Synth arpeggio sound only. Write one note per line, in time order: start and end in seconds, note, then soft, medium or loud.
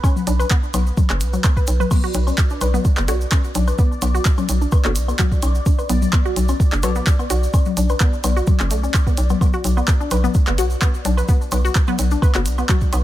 0.04 0.09 C#4 medium
0.27 0.29 D4 medium
0.39 0.43 B4 medium
0.51 0.54 B3 loud
0.74 0.79 B3 medium
1.10 1.14 C#4 medium
1.33 1.38 F#3 medium
1.44 1.48 B3 medium
1.57 1.60 B4 medium
1.80 1.83 B4 medium
1.91 1.96 B3 medium
2.04 2.07 F#4 loud
2.27 2.32 C#4 medium
2.51 2.53 D4 medium
2.62 2.65 B4 medium
2.74 2.77 B3 loud
2.97 3.02 B3 medium
3.08 3.12 F#4 loud
3.32 3.37 C#4 medium
3.55 3.57 D4 medium
3.68 3.71 B4 medium
3.79 3.82 B3 loud
4.02 4.07 B3 medium
4.14 4.18 F#4 loud
4.38 4.43 C#4 medium
4.62 4.64 D4 medium
4.73 4.76 B4 medium
4.85 4.88 B3 loud
5.08 5.13 B3 medium
5.19 5.23 F#4 loud
5.43 5.48 C#4 medium
5.66 5.68 D4 medium
5.79 5.82 B4 medium
5.89 5.93 B3 loud
6.13 6.18 B3 medium
6.25 6.29 F#4 loud
6.49 6.53 C#4 medium
6.72 6.74 D4 medium
6.83 6.87 B4 medium
6.96 6.99 B3 loud
7.19 7.24 B3 medium
7.30 7.34 F#4 loud
7.54 7.59 C#4 medium
7.77 7.79 D4 medium
7.90 7.93 B4 medium
8.01 8.04 B3 loud
8.24 8.29 B3 medium
8.37 8.40 F#4 loud
8.60 8.65 C#4 medium
8.71 8.76 A3 loud
8.83 8.88 C#4 medium
9.07 9.11 B3 medium
9.30 9.33 B3 medium
9.41 9.46 B3 medium
9.54 9.57 F#4 loud
9.77 9.80 B3 loud
10.00 10.02 D4 medium
10.11 10.15 B4 medium
10.24 10.27 B3 loud
10.47 10.52 B3 medium
10.58 10.62 F#4 loud
10.82 10.85 B3 loud
11.05 11.07 D4 medium
11.18 11.21 B4 medium
11.29 11.32 B3 loud
11.52 11.57 B3 medium
11.65 11.68 F#4 loud
11.88 11.91 B3 loud
12.11 12.13 D4 medium
12.22 12.26 B4 medium
12.35 12.38 B3 medium
12.58 12.63 B3 medium
12.69 12.73 F#4 loud
12.93 12.96 B3 medium